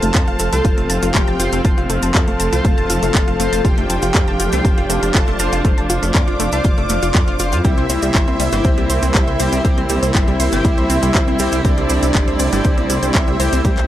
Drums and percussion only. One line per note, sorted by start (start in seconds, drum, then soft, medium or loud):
0.03 closed hi-hat medium
0.03 cabasa soft
0.14 kick loud
0.14 clap loud
0.14 closed hi-hat medium
0.14 cabasa soft
0.28 closed hi-hat soft
0.39 closed hi-hat loud
0.39 cabasa medium
0.53 closed hi-hat medium
0.53 cabasa medium
0.65 kick loud
0.65 closed hi-hat medium
0.65 cabasa soft
0.78 closed hi-hat soft
0.90 closed hi-hat loud
0.90 cabasa medium
1.02 closed hi-hat medium
1.02 cabasa medium
1.15 kick loud
1.15 clap loud
1.15 closed hi-hat medium
1.15 cabasa soft
1.28 closed hi-hat soft
1.40 closed hi-hat loud
1.40 cabasa medium
1.53 closed hi-hat medium
1.53 cabasa medium
1.65 kick loud
1.65 closed hi-hat medium
1.65 cabasa soft
1.78 closed hi-hat soft
1.90 closed hi-hat loud
1.90 cabasa loud
2.02 closed hi-hat medium
2.02 cabasa medium
2.15 kick loud
2.15 clap loud
2.15 closed hi-hat medium
2.15 cabasa soft
2.28 closed hi-hat soft
2.40 closed hi-hat loud
2.40 cabasa loud
2.53 closed hi-hat medium
2.53 cabasa medium
2.65 kick loud
2.65 closed hi-hat medium
2.65 cabasa soft
2.78 closed hi-hat soft
2.90 closed hi-hat loud
2.90 cabasa loud
3.03 closed hi-hat medium
3.03 cabasa medium
3.15 kick loud
3.15 clap loud
3.15 closed hi-hat medium
3.15 cabasa soft
3.28 closed hi-hat soft
3.40 closed hi-hat loud
3.40 cabasa medium
3.53 closed hi-hat medium
3.53 cabasa medium
3.65 kick loud
3.65 closed hi-hat medium
3.65 cabasa soft
3.78 closed hi-hat soft
3.90 closed hi-hat loud
3.90 cabasa loud
4.02 closed hi-hat medium
4.02 cabasa medium
4.14 kick loud
4.14 clap loud
4.14 closed hi-hat medium
4.14 cabasa soft
4.28 closed hi-hat soft
4.40 closed hi-hat loud
4.40 cabasa medium
4.52 closed hi-hat medium
4.52 cabasa medium
4.65 kick loud
4.65 closed hi-hat medium
4.65 cabasa soft
4.78 closed hi-hat soft
4.90 closed hi-hat loud
4.90 cabasa loud
5.03 closed hi-hat medium
5.03 cabasa medium
5.15 kick loud
5.15 clap loud
5.15 closed hi-hat medium
5.15 cabasa soft
5.28 closed hi-hat soft
5.39 closed hi-hat loud
5.39 cabasa loud
5.53 closed hi-hat medium
5.53 cabasa medium
5.65 kick loud
5.65 closed hi-hat medium
5.65 cabasa soft
5.78 closed hi-hat soft
5.90 closed hi-hat loud
5.90 cabasa loud
6.03 closed hi-hat medium
6.03 cabasa medium
6.15 kick loud
6.15 clap loud
6.15 closed hi-hat medium
6.15 cabasa soft
6.28 closed hi-hat soft
6.40 closed hi-hat loud
6.40 cabasa medium
6.52 closed hi-hat medium
6.52 cabasa medium
6.64 kick loud
6.64 closed hi-hat medium
6.64 cabasa soft
6.78 closed hi-hat soft
6.89 closed hi-hat loud
6.89 cabasa loud
7.02 closed hi-hat medium
7.02 cabasa medium
7.14 kick loud
7.14 clap loud
7.14 closed hi-hat medium
7.14 cabasa soft
7.28 closed hi-hat soft
7.39 closed hi-hat loud
7.39 cabasa loud
7.52 closed hi-hat medium
7.52 cabasa medium
7.64 kick loud
7.64 closed hi-hat medium
7.64 cabasa soft
7.78 closed hi-hat soft
7.89 closed hi-hat loud
7.89 ride medium
7.89 cabasa medium
8.02 closed hi-hat medium
8.02 cabasa medium
8.15 kick loud
8.15 clap loud
8.15 closed hi-hat medium
8.15 cabasa soft
8.28 closed hi-hat soft
8.40 closed hi-hat loud
8.40 ride medium
8.40 cabasa loud
8.52 closed hi-hat medium
8.52 cabasa medium
8.64 kick loud
8.64 closed hi-hat medium
8.64 cabasa soft
8.78 closed hi-hat soft
8.90 closed hi-hat loud
8.90 ride medium
8.90 cabasa loud
9.03 closed hi-hat medium
9.03 cabasa medium
9.15 kick loud
9.15 clap loud
9.15 closed hi-hat medium
9.15 cabasa soft
9.28 closed hi-hat soft
9.40 closed hi-hat loud
9.40 ride medium
9.40 cabasa medium
9.52 closed hi-hat medium
9.52 cabasa medium
9.65 kick loud
9.65 closed hi-hat medium
9.65 cabasa soft
9.78 closed hi-hat soft
9.89 closed hi-hat loud
9.89 ride medium
9.89 cabasa loud
10.03 closed hi-hat medium
10.03 cabasa medium
10.15 kick loud
10.15 clap loud
10.15 closed hi-hat medium
10.15 cabasa soft
10.28 closed hi-hat soft
10.40 closed hi-hat loud
10.40 ride medium
10.40 cabasa medium
10.52 closed hi-hat medium
10.52 cabasa medium
10.64 kick loud
10.64 closed hi-hat medium
10.64 cabasa soft
10.78 closed hi-hat soft
10.90 closed hi-hat loud
10.90 ride medium
10.90 cabasa medium
11.03 closed hi-hat medium
11.03 cabasa soft
11.14 kick loud
11.14 clap loud
11.14 closed hi-hat medium
11.14 cabasa soft
11.28 closed hi-hat soft
11.39 closed hi-hat loud
11.39 ride medium
11.39 cabasa loud
11.52 closed hi-hat medium
11.52 cabasa medium
11.65 kick loud
11.65 closed hi-hat medium
11.65 cabasa soft
11.78 closed hi-hat soft
11.89 closed hi-hat loud
11.89 ride medium
11.89 cabasa medium
12.03 closed hi-hat medium
12.03 cabasa soft
12.14 kick loud
12.14 clap loud
12.14 closed hi-hat medium
12.14 cabasa soft
12.28 closed hi-hat soft
12.39 closed hi-hat loud
12.39 ride medium
12.39 cabasa medium
12.53 closed hi-hat medium
12.53 cabasa soft
12.64 kick loud
12.64 closed hi-hat medium
12.64 cabasa soft
12.78 closed hi-hat soft
12.90 closed hi-hat loud
12.90 ride medium
12.90 cabasa medium
13.03 closed hi-hat medium
13.03 cabasa medium
13.15 kick loud
13.15 clap loud
13.15 closed hi-hat medium
13.15 cabasa soft
13.28 closed hi-hat soft
13.40 closed hi-hat loud
13.40 ride medium
13.40 cabasa medium
13.53 closed hi-hat medium
13.53 cabasa soft
13.65 kick loud
13.65 closed hi-hat medium
13.65 cabasa soft
13.78 clap soft
13.78 closed hi-hat soft